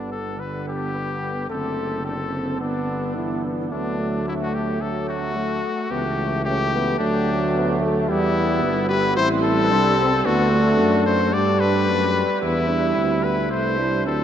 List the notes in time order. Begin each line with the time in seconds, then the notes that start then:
Already playing: G1 D3 B3
0.12 A4
0.39 D3 G3 B3 B4
0.68 G4
0.94 B3
1.49 F#1 D3 A3 C4 A4
2.05 D3 C4 D4 A4
2.32 C4
2.60 G1 D3 B3 D4
3.16 E3 E4
3.44 D4
3.71 D2 F#3 A3 B3 D4
4.00 A3
4.27 A3 E4
4.41 F#4
4.54 G4
4.81 F#3 A3 A4
5.09 F#4
5.36 A3
5.90 C#2 E3 A3 B3 G4
6.18 A3
6.45 E3 A3 C#4 G4
6.73 B3
6.99 D2 F#3 A3 D4
7.55 B3
7.81 A3
8.08 E2 G3 B3 E4
8.62 G1 B3
8.89 G4 B4
9.16 A1 G3 C4 E4 C5
9.44 A4
9.72 C2 D4
9.99 C4
10.24 D2 A3 B3 D4 F#4
10.52 A3
10.80 F#2
11.06 C5
11.33 G2 G3 D4 D5
11.60 B4
11.88 F#2
12.41 E2 G3 B3 E4
12.69 D4
12.96 D2 C4
13.24 B3 B4
13.50 C2 A3 E4 C5
13.78 G3 D4 E4
14.06 D2 F#3 C4 D4 A4